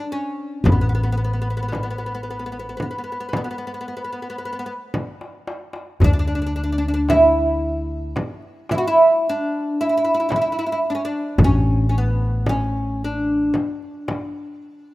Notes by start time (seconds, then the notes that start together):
0.12 C#4, darbuka ka
0.64 A1 B3, darbuka dum, frame drum
0.72 B3
0.81 B3
0.89 B3
0.95 B3
1.04 B3
1.12 B3
1.17 B3, darbuka ka
1.24 B3
1.33 B3
1.42 B3
1.50 B3
1.57 B3
1.63 B3
1.69 B3, darbuka tek
1.73 B3, frame drum
1.83 B3
1.91 B3
1.98 B3
2.06 B3
2.15 B3
2.23 B3
2.30 B3
2.39 B3
2.46 B3
2.52 B3
2.59 B3
2.69 B3
2.77 B3, frame drum
2.82 B3
2.91 B3
2.98 B3
3.04 B3, darbuka ka
3.12 B3
3.20 B3
3.29 B3
3.33 B3, darbuka tek, frame drum
3.44 B3
3.51 B3
3.58 B3
3.67 B3
3.74 B3
3.81 B3
3.87 B3, darbuka ka
3.97 B3
4.05 B3
4.13 B3
4.22 B3
4.30 B3
4.38 B3, darbuka ka
4.45 B3
4.53 B3
4.59 B3
4.66 B3
4.94 darbuka tek, frame drum
5.21 darbuka ka
5.47 darbuka tek
5.73 darbuka ka
6.00 D2, darbuka dum, frame drum
6.04 D4
6.13 D4
6.19 D4
6.27 D4
6.35 D4
6.42 D4
6.47 D4
6.55 D4, darbuka ka
6.64 D4
6.72 D4
6.78 D4
6.88 D4
6.94 D4
7.09 E4, darbuka tek, frame drum
8.16 darbuka tek, frame drum
8.42 darbuka ka
8.69 E4, darbuka tek, frame drum
8.78 F#4
8.88 E4
9.29 D4
9.81 E4
9.89 E4
9.97 E4
10.05 E4
10.14 E4
10.20 E4
10.29 E4, darbuka tek, frame drum
10.36 E4
10.42 E4
10.52 E4
10.59 E4
10.66 E4
10.72 E4
10.85 darbuka ka
10.90 D4
10.95 C#4
11.05 D4
11.38 A1, darbuka dum, frame drum
11.44 C#4
11.89 C#4, darbuka ka
11.98 B3
12.46 C#4, darbuka tek, frame drum
13.04 D4
13.54 darbuka tek, frame drum
13.83 darbuka ka
14.08 darbuka tek, frame drum